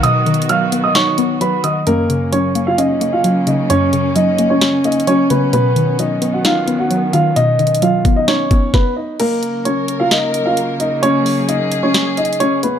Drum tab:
CC |------------------------|------------------------|------------------------|------------------------|
HH |x--xxxx--x--x--x--x--x--|x--x--x--x--x--x--x--x--|x--x--x--x--x--xxxx--x--|x--x--x--x--x--x--x--x--|
SD |------------o-----------|------------------------|------------o-----------|------------o-----------|
BD |------------------------|------------------------|------------------------|------------------------|

CC |------------------------|x-----------------------|------------------------|
HH |x--xxxx--x--x--x--------|x--x--x--x--x--x--x--x--|x--o--x--x--x--xxxx--x--|
SD |------------o-----o-----|------------o-----------|------------o-----------|
BD |---------o-----o--o-----|------------------------|------------------------|